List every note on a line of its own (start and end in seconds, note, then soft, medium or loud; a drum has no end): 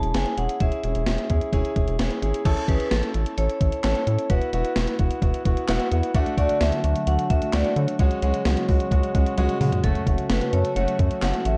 0.00 0.14 E1 loud
0.00 0.13 A5 medium
0.00 closed hi-hat soft
0.14 0.25 F#1 medium
0.14 0.32 C#4 medium
0.14 0.32 E4 medium
0.14 0.32 G#4 medium
0.14 0.38 G#5 medium
0.14 snare loud
0.14 closed hi-hat medium
0.26 closed hi-hat soft
0.38 0.48 E1 medium
0.38 0.55 C#4 medium
0.38 0.55 E4 medium
0.38 0.55 G#4 medium
0.38 0.61 F#5 medium
0.38 closed hi-hat medium
0.49 closed hi-hat medium
0.60 0.71 E1 loud
0.60 0.78 C#4 medium
0.60 0.78 E4 medium
0.60 0.78 G#4 loud
0.60 1.95 E5 medium
0.60 kick loud
0.60 closed hi-hat medium
0.72 closed hi-hat soft
0.84 0.94 E1 medium
0.84 1.02 C#4 medium
0.84 1.02 E4 medium
0.84 1.02 G#4 medium
0.84 closed hi-hat medium
0.95 1.06 E1 loud
0.95 closed hi-hat soft
1.06 1.17 E1 loud
1.06 1.25 C#4 medium
1.06 1.25 E4 medium
1.06 1.25 G#4 medium
1.06 snare loud
1.06 closed hi-hat medium
1.18 closed hi-hat medium
1.30 1.41 E2 loud
1.30 1.48 C#4 medium
1.30 1.48 E4 medium
1.30 1.48 G#4 medium
1.30 kick medium
1.30 closed hi-hat medium
1.41 closed hi-hat soft
1.53 1.63 E1 loud
1.53 1.71 C#4 loud
1.53 1.71 E4 loud
1.53 1.71 G#4 loud
1.53 kick loud
1.53 closed hi-hat medium
1.65 closed hi-hat soft
1.76 1.87 E1 medium
1.76 1.94 C#4 medium
1.76 1.94 E4 medium
1.76 1.94 G#4 medium
1.76 kick medium
1.76 closed hi-hat medium
1.88 1.98 E1 loud
1.88 closed hi-hat soft
1.99 2.10 E1 medium
1.99 2.17 C#4 medium
1.99 2.17 E4 medium
1.99 2.17 G#4 medium
1.99 snare loud
1.99 closed hi-hat medium
2.10 closed hi-hat soft
2.22 2.33 G#1 medium
2.22 2.40 C#4 medium
2.22 2.40 E4 medium
2.22 2.40 G#4 loud
2.22 closed hi-hat medium
2.34 closed hi-hat medium
2.45 2.56 A1 loud
2.45 2.63 C#4 loud
2.45 2.63 E4 loud
2.45 2.63 A4 loud
2.45 kick loud
2.45 closed hi-hat medium
2.45 crash loud
2.57 closed hi-hat soft
2.68 2.79 A1 loud
2.68 2.86 C#4 loud
2.68 2.86 E4 medium
2.68 2.86 G#4 loud
2.68 2.92 B4 medium
2.68 kick medium
2.68 closed hi-hat medium
2.80 closed hi-hat medium
2.91 3.02 A1 loud
2.91 3.09 C#4 medium
2.91 3.09 E4 medium
2.91 3.39 A4 medium
2.91 3.09 A4 medium
2.91 snare loud
2.91 closed hi-hat medium
3.03 closed hi-hat medium
3.14 3.25 A1 loud
3.14 3.32 C#4 medium
3.14 3.32 E4 medium
3.14 3.32 A4 medium
3.14 closed hi-hat medium
3.26 closed hi-hat medium
3.38 3.48 A1 loud
3.38 3.55 C#4 medium
3.38 3.55 E4 medium
3.38 3.55 A4 medium
3.38 3.81 C#5 loud
3.38 closed hi-hat medium
3.50 closed hi-hat soft
3.61 3.71 A1 loud
3.61 3.78 C#4 medium
3.61 3.78 E4 medium
3.61 3.78 A4 medium
3.61 kick loud
3.61 closed hi-hat medium
3.72 closed hi-hat medium
3.84 3.94 A1 loud
3.84 4.01 C#4 loud
3.84 4.01 E4 medium
3.84 4.02 A4 loud
3.84 4.31 C#5 loud
3.84 snare loud
3.84 clap medium
3.84 closed hi-hat medium
3.95 closed hi-hat soft
4.07 4.17 A2 medium
4.07 4.25 C#4 medium
4.07 4.25 E4 medium
4.07 4.25 A4 medium
4.07 closed hi-hat medium
4.19 closed hi-hat medium
4.30 4.40 E1 loud
4.30 4.48 B3 loud
4.30 4.48 E4 medium
4.30 4.48 F#4 loud
4.30 4.95 B4 medium
4.30 kick loud
4.30 closed hi-hat medium
4.42 closed hi-hat soft
4.53 4.64 E1 loud
4.53 4.71 B3 loud
4.53 4.71 E4 medium
4.53 4.71 F#4 loud
4.53 closed hi-hat medium
4.65 closed hi-hat medium
4.76 4.87 E1 loud
4.76 4.94 B3 medium
4.76 4.94 E4 medium
4.76 4.94 F#4 medium
4.76 snare loud
4.76 closed hi-hat medium
4.87 closed hi-hat medium
4.99 5.10 E1 loud
4.99 5.17 B3 medium
4.99 5.17 E4 medium
4.99 5.17 F#4 medium
4.99 kick medium
4.99 closed hi-hat medium
5.11 closed hi-hat medium
5.22 5.33 E1 loud
5.22 5.40 B3 medium
5.22 5.40 E4 medium
5.22 5.40 F#4 loud
5.22 kick loud
5.22 closed hi-hat medium
5.34 closed hi-hat soft
5.45 5.56 E1 loud
5.45 5.63 B3 medium
5.45 5.63 E4 medium
5.45 5.63 F#4 medium
5.45 kick loud
5.45 closed hi-hat medium
5.57 closed hi-hat medium
5.68 5.79 E1 loud
5.68 5.86 B3 loud
5.68 5.86 E4 loud
5.68 5.86 F#4 loud
5.68 snare loud
5.68 clap medium
5.68 closed hi-hat medium
5.80 closed hi-hat soft
5.92 6.02 E2 medium
5.92 6.09 B3 medium
5.92 6.09 E4 medium
5.92 6.09 F#4 loud
5.92 closed hi-hat medium
6.03 closed hi-hat medium
6.15 6.25 D2 loud
6.15 7.98 D3 medium
6.15 7.97 F#3 medium
6.15 6.32 A3 loud
6.15 7.98 A3 medium
6.15 6.32 D4 loud
6.15 6.32 F#4 loud
6.15 7.98 F#4 medium
6.15 kick loud
6.15 closed hi-hat medium
6.26 closed hi-hat soft
6.37 6.48 D2 medium
6.37 6.55 A3 loud
6.37 6.55 D4 medium
6.37 6.55 F#4 loud
6.37 6.59 D5 medium
6.37 kick medium
6.37 closed hi-hat medium
6.49 closed hi-hat medium
6.61 6.71 D2 loud
6.61 6.79 A3 medium
6.61 6.79 D4 medium
6.61 6.79 F#4 medium
6.61 7.08 E5 loud
6.61 snare loud
6.61 closed hi-hat medium
6.72 closed hi-hat medium
6.84 6.94 D2 loud
6.84 7.02 A3 medium
6.84 7.02 D4 medium
6.84 7.02 F#4 medium
6.84 closed hi-hat medium
6.96 closed hi-hat medium
7.07 7.17 D2 loud
7.07 7.25 A3 medium
7.07 7.25 D4 medium
7.07 7.25 F#4 medium
7.07 7.31 F#5 loud
7.07 closed hi-hat medium
7.19 closed hi-hat soft
7.30 7.41 D2 loud
7.30 7.48 A3 medium
7.30 7.48 D4 medium
7.30 7.48 F#4 medium
7.30 7.54 E5 medium
7.30 kick loud
7.30 closed hi-hat medium
7.42 closed hi-hat medium
7.53 7.64 D2 loud
7.53 7.71 A3 loud
7.53 7.71 D4 medium
7.53 7.71 F#4 loud
7.53 7.63 D5 loud
7.53 snare loud
7.53 clap medium
7.53 closed hi-hat medium
7.64 closed hi-hat soft
7.76 7.87 D3 loud
7.76 7.94 A3 medium
7.76 7.94 D4 medium
7.76 7.94 F#4 medium
7.76 7.86 C#5 medium
7.76 closed hi-hat medium
7.88 closed hi-hat medium
7.99 8.10 C#2 loud
7.99 9.82 C#3 medium
7.99 9.82 F#3 medium
7.99 9.82 G#3 medium
7.99 8.17 G#3 loud
7.99 8.17 C#4 medium
7.99 9.82 F#4 medium
7.99 8.17 F#4 loud
7.99 9.34 C#5 medium
7.99 kick loud
7.99 closed hi-hat medium
8.11 closed hi-hat soft
8.22 8.33 C#2 loud
8.22 8.40 G#3 loud
8.22 8.40 C#4 medium
8.22 8.40 F#4 loud
8.22 closed hi-hat medium
8.34 closed hi-hat medium
8.45 8.56 C#2 loud
8.45 8.63 G#3 medium
8.45 8.63 C#4 medium
8.45 8.63 F#4 medium
8.45 snare loud
8.45 closed hi-hat medium
8.57 closed hi-hat medium
8.69 8.79 C#2 loud
8.69 8.86 G#3 medium
8.69 8.86 C#4 medium
8.69 8.86 F#4 loud
8.69 kick medium
8.69 open hi-hat medium
8.80 closed hi-hat medium
8.91 9.02 C#2 loud
8.91 9.09 G#3 medium
8.91 9.09 C#4 medium
8.91 9.09 F#4 loud
8.91 kick loud
8.91 closed hi-hat medium
9.03 closed hi-hat soft
9.15 9.25 C#2 loud
9.15 9.32 G#3 medium
9.15 9.32 C#4 medium
9.15 9.32 F#4 loud
9.15 kick loud
9.15 closed hi-hat medium
9.26 closed hi-hat medium
9.38 9.48 C#2 loud
9.38 9.55 G#3 loud
9.38 9.55 C#4 loud
9.38 9.55 F#4 loud
9.38 closed hi-hat medium
9.38 high tom medium
9.49 closed hi-hat soft
9.61 9.71 C#3 medium
9.61 9.78 G#3 medium
9.61 9.78 C#4 medium
9.61 9.78 F#4 loud
9.61 mid tom medium
9.61 open hi-hat medium
9.72 closed hi-hat medium
9.72 floor tom loud
9.84 9.94 F#1 loud
9.84 11.57 C#3 medium
9.84 11.57 F#3 medium
9.84 11.57 A3 medium
9.84 10.02 A3 loud
9.84 10.02 C#4 medium
9.84 11.57 F#4 medium
9.84 10.02 F#4 loud
9.84 10.27 A4 medium
9.84 kick loud
9.84 closed hi-hat medium
9.95 closed hi-hat soft
10.07 10.17 F#1 loud
10.07 10.25 A3 medium
10.07 10.25 C#4 medium
10.07 10.25 F#4 medium
10.07 kick medium
10.07 closed hi-hat medium
10.18 closed hi-hat medium
10.30 10.40 F#1 loud
10.30 10.48 A3 medium
10.30 10.48 C#4 medium
10.30 10.48 F#4 medium
10.30 10.54 B4 medium
10.30 snare loud
10.30 closed hi-hat medium
10.41 closed hi-hat medium
10.53 10.64 F#2 loud
10.53 10.71 A3 medium
10.53 10.71 C#4 medium
10.53 10.71 A4 medium
10.53 10.63 C#5 loud
10.53 closed hi-hat medium
10.65 closed hi-hat medium
10.76 10.87 F#1 loud
10.76 10.94 A3 loud
10.76 10.94 C#4 medium
10.76 10.94 F#4 loud
10.76 11.24 C#5 loud
10.76 closed hi-hat medium
10.88 closed hi-hat soft
10.99 11.10 F#2 loud
10.99 11.17 A3 medium
10.99 11.17 C#4 medium
10.99 11.17 F#4 medium
10.99 kick loud
10.99 closed hi-hat medium
11.11 closed hi-hat medium
11.22 11.33 F#1 loud
11.22 11.40 A3 medium
11.22 11.40 C#4 medium
11.22 11.40 F#4 medium
11.22 11.46 F#5 loud
11.22 snare loud
11.22 clap medium
11.22 closed hi-hat medium
11.33 closed hi-hat soft
11.45 11.56 A1 medium
11.45 11.57 A3 medium
11.45 11.57 C#4 medium
11.45 11.57 F#4 medium
11.45 11.57 E5 loud
11.45 closed hi-hat medium